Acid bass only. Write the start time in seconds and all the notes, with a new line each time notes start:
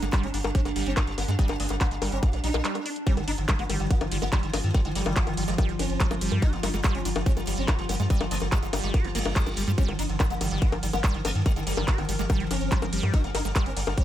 0.02 G#3
0.13 G3
0.23 G#3
0.34 D4
0.55 G3
0.65 G#3
0.76 G3
0.97 G4
1.07 G3
1.18 G3
1.28 G#3
1.39 G3
1.49 G#3
1.60 D4
1.81 G3
1.91 G#3
2.02 G3
2.23 G4
2.33 G3
2.44 G3
2.54 G#3
2.65 G3
2.75 G#3
2.86 D4
3.07 G3
3.17 G#3
3.28 D4
3.49 G3
3.59 G#3
3.70 G3
3.91 G4
4.01 G3
4.12 G3
4.22 G#3
4.33 G3
4.43 G#3
4.54 D4
4.75 G3
4.85 G#3
4.96 G3
5.16 G4
5.27 G3
5.37 G3
5.48 G#3
5.58 G3
5.69 G#3
5.79 D4
6.00 G3
6.11 G#3
6.21 G3
6.42 G4
6.53 G3
6.63 G3
6.74 G#3
6.84 G3
6.95 G#3
7.05 D4
7.26 G3
7.37 G#3
7.47 G3
7.68 G4
7.79 G3
7.89 G3
8.00 G#3
8.10 G3
8.21 G#3
8.31 D4
8.52 G3
8.63 G#3
8.73 G3
8.94 G4
9.05 G3
9.15 A#3
9.36 G3
9.47 D4
9.57 G3
9.68 G3
9.78 G3
9.88 G#3
9.99 D4
10.20 G3
10.30 G#3
10.41 G3
10.62 G4
10.72 G3
10.83 G3
10.93 G#3
11.04 G3
11.14 G#3
11.25 D4
11.46 G3
11.56 G#3
11.67 G3
11.88 G4
11.98 G3
12.09 G3
12.19 G#3
12.30 G3
12.40 G#3
12.51 D4
12.72 G3
12.82 G#3
12.93 G3
13.14 G4
13.24 G3
13.35 G3
13.45 G#3
13.56 G3
13.66 G#3
13.77 D4
13.98 G3